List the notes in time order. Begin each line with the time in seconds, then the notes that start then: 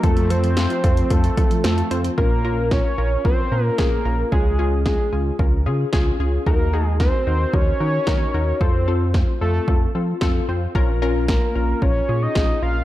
0.03 F2 F3 A3 C4 F4 A4, kick, closed hi-hat
0.17 A3, closed hi-hat
0.30 F3 C4 F4 A4 C5, closed hi-hat
0.44 F3, closed hi-hat
0.57 C4 F4 A4, snare, closed hi-hat
0.70 F4, closed hi-hat
0.84 F2 C4 F4 A4, kick, closed hi-hat
0.97 closed hi-hat
1.10 F2 F3 C4 F4 A4 C5, kick, closed hi-hat
1.24 A3, closed hi-hat
1.37 F3 C4 F4 A4, kick, closed hi-hat
1.51 F3, closed hi-hat
1.64 F2 C4 F4 A4, snare, closed hi-hat
1.78 F4, closed hi-hat
1.91 F2 C4 F4 C5, closed hi-hat
2.04 C4, closed hi-hat
2.18 A#1 C#4 F4 A#4, kick
2.44 C#4 F4 A#4
2.71 C#4 F4 A#4 C#5, kick, snare
2.98 A#1 C#4 F4 A#4
3.25 A#1 C#4 F4 A#4 C5, kick
3.52 A#2 C#4 F4 A#4
3.64 A#4
3.78 A#1 C#4 F4 G#4 A#4, kick, snare
4.05 A#1 C#4 F4 A#4
4.32 C#2 C#4 F4 G#4, kick
4.59 C#4 F4 G#4
4.86 C#4 F4 G#4, kick, snare
5.12 C#2 C#4 F4 G#4
5.39 C#2 C#4 F4 A#4, kick
5.66 C#3 C#4 F4 G#4
5.93 C#2 C#4 F4 G#4, kick, snare
6.20 C#2 C#4 F4 G#4
6.46 D#2 D#4 F#4 A#4, kick
6.73 D#4 F#4 G#4
7.00 D#4 F#4 A#4 C5, kick, snare
7.27 D#2 D#4 F#4 A#4
7.54 D#2 D#4 F#4 A#4 C#5, kick
7.80 D#3 D#4 F#4 A#4
8.07 D#2 D#4 F#4 A#4, kick, snare
8.34 D#2 D#4 F#4 A#4
8.61 F2 C4 F4 A4 C5, kick
8.88 C4 F4 A4
9.14 C4 F4 C5, kick, snare
9.41 F2 C4 F4 A4
9.68 F2 C4 F4 A4, kick
9.95 F3 C4 F4 A4
10.21 F2 C4 F4 A4, kick, snare
10.48 F2 C4 F4 C5
10.75 A#1 C#4 F4 A#4, kick
11.02 C#4 F4 A#4
11.28 C#4 F4 A#4, kick, snare
11.55 A#1 C#4 F4 A#4
11.82 A#1 C#4 F4 A#4 C#5, kick
12.09 A#2 C#4 F4 G#4
12.22 D#5
12.35 A#1 C#4 F4 G#4, kick, snare
12.62 A#1 C#4 F4 A#4 F5